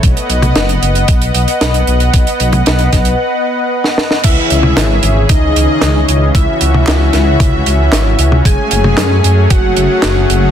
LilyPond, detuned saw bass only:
\new Staff \with { instrumentName = "Detuned saw bass" } { \clef bass \time 4/4 \key cis \minor \tempo 4 = 114 b,,8 b,,8 fis,,8 fis,,8 b,,8 b,,8 b,,8 b,,8 | b,,8 b,,8 b,,8 b,,8 r2 | cis,8 cis,8 gis,,8 gis,,8 cis,8 cis,8 cis,8 cis,8 | cis,8 cis,8 cis,8 cis,8 cis,8 cis,8 gis,,8 cis,8 |
fis,,8 fis,,8 fis,8 fis,8 fis,,8 fis,,8 fis,,8 fis,,8 | }